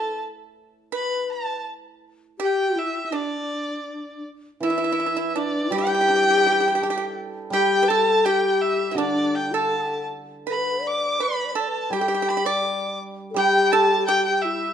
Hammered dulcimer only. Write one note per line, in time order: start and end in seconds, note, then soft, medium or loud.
4.60 6.80 E3 medium
5.70 7.49 G3 medium
6.09 7.53 D4 soft
6.45 7.89 G4 soft
6.82 8.25 A4 medium
7.50 9.70 G3 medium
8.95 11.18 D3 medium
11.90 13.33 G3 medium
13.34 14.73 G3 medium